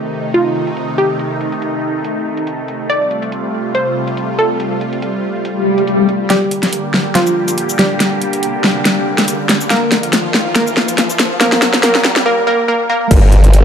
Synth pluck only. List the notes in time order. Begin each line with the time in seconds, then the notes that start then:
Already playing: G4
0.34 F4
0.98 G4
2.90 D5
3.75 C5
4.39 A4
6.30 G3 G4
7.15 F3 F4
7.79 G3 G4
9.71 A#3 A#4
10.56 A#3 A#4
11.41 A#3 A#4
11.83 A#3 A#4
12.26 A#3 A#4
12.47 A#3 A#4
12.68 A#3 A#4
12.90 A#3 A#4